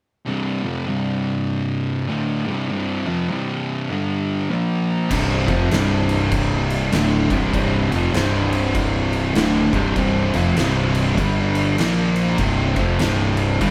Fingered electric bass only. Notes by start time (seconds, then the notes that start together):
5.11 C1
5.48 F1
5.72 C1
6.93 D1
7.30 C1
7.53 C1
7.91 F1
8.14 C1
9.35 D1
9.73 C1
9.96 C1
10.34 F1
10.57 C1
11.18 G1
11.79 A#1
12.39 C1
12.77 F1
13.02 C1
13.61 G1